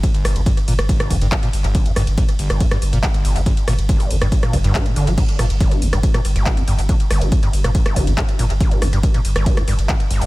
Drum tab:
CC |----------------|----------------|----------------|x---------------|
RD |xxxxxxxxxxxxxxxx|xxxxxxxxxxxxxxxx|xxxxxxxxxxxxxxxx|xxxxxxxxxxxxxxxx|
HH |xxoxxxoxxxoxxxox|xxoxxxoxxxoxxxoo|xxoxxooxxxoxxxox|xxoxxxoxxxoxxxoo|
CP |------------x---|------------x---|------------x---|------------x---|
SD |--r----r-r------|--r----r-r------|--r----r-r------|--r----r-r------|
BD |o---o---o-o-o---|o---o---o---o---|o---o---o-o-o---|o---o---o---o---|

CC |----------------|----------------|
RD |xxxxxxxxxxxxxxxx|xxxxxxxxxxxxxxxx|
HH |xxoxxxoxxxoxxxox|xxoxxxoxxxoxxxoo|
CP |------------x---|------------x---|
SD |--r----r-r------|--r----r-r------|
BD |o---o---o-o-o---|o---o---o---o---|